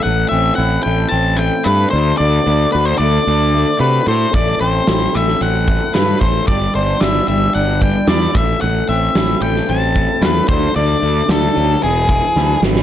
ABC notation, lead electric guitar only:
X:1
M:4/4
L:1/16
Q:1/4=112
K:Ador
V:1 name="Lead electric guitar"
f2 e2 f2 g2 a2 g2 B2 c2 | d4 B c d6 B2 c2 | d2 c4 e2 f4 B2 c2 | d2 c2 e2 e2 f2 g2 d2 e2 |
f2 e4 g2 a4 B2 c2 | d4 A4 ^G6 z2 |]